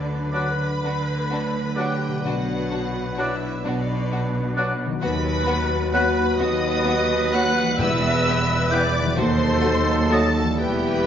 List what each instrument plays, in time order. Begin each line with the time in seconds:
Already playing: double bass section D2, cello section D3, harp D3 F#3 D4 F#4 B4, french horn section F#3 D4, viola section D4, trumpet section B4, violin section D5
0.32 bassoon F#3, violin section D4 F#4 B5, viola section B4, oboe D5, flute section F#6
0.82 double bass section D2, cello section D3, violin section D4 F#4
1.31 violin section D4 F#4
1.76 bassoon F#3, violin section D4 F#4 G5, viola section G4, oboe D5, flute section F#6
2.08 harp B2
2.12 harp F#3
2.17 harp D4
2.21 viola section F#4, harp B4
2.25 double bass section B1, timpani B2, cello section B2, violin section D4 F#4 F#5
2.71 violin section D4 F#4
3.17 bassoon F#3, violin section D4 F#4 E5, viola section E4, oboe D5, flute section F#6
3.63 double bass section B1, cello section B2, viola section D4, violin section D4 F#4 D5
4.12 violin section D4 F#4
4.56 bassoon F#3, violin section D4 F#4, oboe D5, flute section F#6
4.86 harp D#3
4.90 harp F#3
4.94 harp F#4
4.99 double bass section D#2, cello section D#2, french horn section F#3 F#4, violin section B3 F#4 B5, harp B4, trumpet section B4, viola section B4
5.46 violin section B3 F#4
5.91 bassoon F#3, violin section B3 F#4 B5, viola section B4, oboe B4, flute section F#6
6.38 cello section D#2, double bass section D#2, violin section B3 F#4 D#6, viola section D#5
6.85 violin section B3 F#4
7.32 bassoon F#3, violin section B3 F#4 F#6, oboe B4, viola section F#5, flute section F#6
7.62 harp E3
7.67 harp G3
7.71 harp E4
7.76 timpani E2, cello section E2, violin section B3 G4, harp B4, viola section E5
7.80 double bass section E1, french horn section G3 E4, violin section E6
8.27 violin section B3 G4
8.70 bassoon E3, violin section B3 G4 D6, oboe B4, viola section D5, flute section G6
9.00 harp D#3
9.04 harp F#3
9.09 harp F#4
9.13 double bass section D#2, cello section D#2, violin section A3 F#4, french horn section D#4, harp A4, viola section C5
9.17 french horn section F#3, trumpet section A4, violin section C6
9.62 violin section A3 F#4
10.10 bassoon F#3, violin section A3 F#4 A5, viola section A4, oboe D#5, flute section A6
10.42 harp E3
10.46 harp G3
10.51 harp E4
10.55 double bass section E1, violin section B3 E4 G5, viola section G4, harp B4
10.59 cello section E2, french horn section E3 E4, trumpet section B4